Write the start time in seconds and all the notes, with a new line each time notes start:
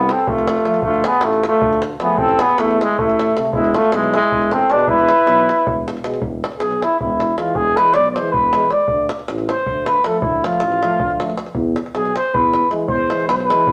Already playing: C2 B3
0.08 C4 A4, davul high
0.19 davul high
0.27 F1 A3 F4, davul low
0.38 davul high
0.47 davul high
0.57 davul high
0.65 F3 A3, davul high
0.74 davul high
0.82 D2 A3 F4, davul low
0.94 davul high
1.04 B3 G#4, davul high
1.13 davul high
1.21 A1 A3 F4, davul high
1.33 davul high
1.43 A3 F4, davul high
1.62 D2, davul low
1.73 davul high
1.82 davul high
2.00 F3 A3 B3 G#4, davul high
2.17 A1 C4 A4, davul low
2.29 davul high
2.39 B3 G#4, davul high
2.49 davul high
2.57 E2 A3 E4, davul high
2.71 davul high
2.79 G#3 E4, davul high
2.98 A1 A3 E4, davul low
3.09 davul high
3.19 davul high
3.36 C3 A3, davul high
3.45 davul high
3.53 E1 G#3 E4, davul low
3.64 davul high
3.74 A3 F4, davul high
3.84 davul high
3.92 B1 G#3 E4, davul high
4.04 davul high
4.13 G#3 E4, davul high
4.32 E1, davul low
4.42 davul high
4.51 C4 A4, davul high
4.69 B2 G#3 D4 B4, davul high
4.79 davul high
4.86 E1 E4 B4, davul low
4.99 davul high
5.09 davul high
5.18 davul high
5.27 B1, davul high
5.39 davul high
5.49 davul high
5.58 davul high
5.66 E1, davul low
5.88 davul high
5.97 davul high
6.04 B2 G#3, davul high
6.14 davul high
6.21 E1, davul low
6.44 davul high
6.52 davul high
6.59 B1 G#4, davul high
6.71 davul high
6.82 E4, davul high
7.00 E1 E4, davul low
7.20 davul high
7.38 E3 G#3 F4, davul high
7.55 E1 G#4, davul low
7.77 E3 G#3 B4, davul high
7.86 davul high
7.94 B1 D5, davul high
8.06 davul high
8.10 D5
8.14 E3 G#3 C5, davul high
8.32 E1 B4, davul low
8.53 E3 G#3, davul high
8.70 D5, davul high
8.88 D2, davul low
9.09 davul high
9.19 davul high
9.28 A1, davul high
9.38 davul high
9.49 C5, davul high
9.66 D2, davul low
9.86 B4, davul high
10.04 F3 A3 A4, davul high
10.21 D2 E4, davul low
10.44 F3 A3 F4, davul high
10.53 davul high
10.60 A1, davul high
10.72 davul high
10.83 F3 A3, davul high
11.00 D2, davul low
11.10 davul high
11.20 F3 A3, davul high
11.30 davul high
11.37 davul high
11.46 davul high
11.55 E2, davul low
11.76 davul high
11.86 davul high
11.94 B1 G#4, davul high
12.05 davul high
12.16 C5, davul high
12.34 E2 B4, davul low
12.53 davul high
12.70 E3 G#3, davul high
12.88 E2 C5, davul low
13.10 E3 G#3, davul high
13.20 davul high
13.27 B1 B4, davul high
13.35 C5
13.40 davul high
13.45 E3 B4
13.50 G#3, davul high
13.66 E2, davul low